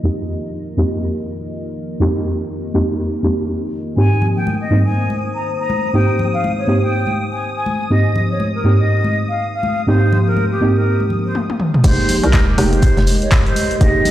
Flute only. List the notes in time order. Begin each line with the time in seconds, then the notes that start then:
3.97 G#5
4.36 G5
4.61 D#5
4.86 G#5
5.35 A#5
5.59 A#5
5.94 G5
6.33 F5
6.58 C#5
6.82 G5
7.32 G#5
7.56 G#5
7.91 D#5
8.30 C#5
8.55 A#4
8.79 D#5
9.29 F5
9.53 F5
9.88 C5
10.27 A#4
10.51 G4
10.76 A#4
11.25 C5
11.84 C5
12.23 A#4
12.48 G4
12.73 C5
13.22 C#5
13.47 C5
13.81 D#5